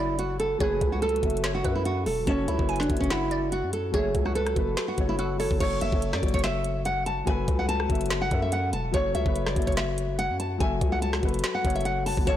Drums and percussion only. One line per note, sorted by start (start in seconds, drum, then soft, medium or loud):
0.19 closed hi-hat medium
0.40 closed hi-hat medium
0.60 kick loud
0.60 closed hi-hat medium
0.81 kick loud
0.81 closed hi-hat medium
1.02 closed hi-hat soft
1.09 closed hi-hat medium
1.16 closed hi-hat medium
1.23 kick medium
1.23 closed hi-hat medium
1.30 closed hi-hat medium
1.37 closed hi-hat medium
1.44 snare loud
1.44 closed hi-hat medium
1.64 kick loud
1.64 closed hi-hat medium
1.85 closed hi-hat medium
2.06 open hi-hat medium
2.27 kick loud
2.27 closed hi-hat medium
2.48 closed hi-hat medium
2.59 kick loud
2.69 closed hi-hat soft
2.76 closed hi-hat medium
2.80 snare medium
2.80 closed hi-hat medium
2.90 kick medium
2.90 closed hi-hat medium
2.97 kick medium
2.97 closed hi-hat medium
3.04 closed hi-hat medium
3.10 snare loud
3.10 closed hi-hat medium
3.31 closed hi-hat medium
3.52 closed hi-hat medium
3.73 closed hi-hat medium
3.94 kick loud
3.94 closed hi-hat medium
4.15 kick loud
4.15 closed hi-hat medium
4.26 cross-stick medium
4.35 closed hi-hat medium
4.46 cross-stick loud
4.46 closed hi-hat medium
4.56 kick medium
4.56 closed hi-hat medium
4.77 snare loud
4.77 closed hi-hat medium
4.98 kick medium
4.98 closed hi-hat medium
5.19 closed hi-hat medium
5.40 open hi-hat medium
5.51 kick medium
5.60 kick loud
5.60 closed hi-hat medium
5.60 crash loud
5.81 closed hi-hat medium
5.92 kick loud
6.02 closed hi-hat medium
6.13 cross-stick loud
6.13 snare medium
6.23 kick medium
6.23 closed hi-hat medium
6.28 closed hi-hat medium
6.34 kick medium
6.34 closed hi-hat medium
6.39 closed hi-hat medium
6.44 snare loud
6.44 closed hi-hat medium
6.64 closed hi-hat medium
6.85 closed hi-hat medium
7.06 closed hi-hat medium
7.27 kick loud
7.27 closed hi-hat medium
7.48 kick loud
7.48 closed hi-hat medium
7.69 closed hi-hat medium
7.80 cross-stick loud
7.90 kick medium
7.90 closed hi-hat medium
7.95 closed hi-hat medium
8.01 closed hi-hat medium
8.06 closed hi-hat medium
8.10 snare loud
8.10 closed hi-hat medium
8.31 kick loud
8.31 closed hi-hat medium
8.52 closed hi-hat medium
8.73 closed hi-hat medium
8.94 kick loud
8.94 closed hi-hat medium
9.15 closed hi-hat medium
9.26 kick loud
9.36 closed hi-hat medium
9.47 cross-stick loud
9.47 snare medium
9.56 kick medium
9.56 closed hi-hat medium
9.62 closed hi-hat medium
9.67 kick loud
9.67 closed hi-hat medium
9.72 closed hi-hat medium
9.77 snare loud
9.77 closed hi-hat medium
9.98 closed hi-hat medium
10.19 closed hi-hat medium
10.40 closed hi-hat medium
10.60 kick loud
10.60 closed hi-hat medium
10.81 kick loud
10.81 closed hi-hat medium
11.02 closed hi-hat medium
11.13 cross-stick loud
11.13 snare medium
11.23 kick medium
11.23 closed hi-hat soft
11.29 closed hi-hat medium
11.34 closed hi-hat medium
11.39 closed hi-hat medium
11.44 snare loud
11.44 closed hi-hat medium
11.65 kick loud
11.65 closed hi-hat medium
11.70 closed hi-hat medium
11.76 closed hi-hat medium
11.81 closed hi-hat soft
11.85 closed hi-hat medium
12.06 open hi-hat medium
12.17 kick medium
12.27 kick loud
12.27 closed hi-hat medium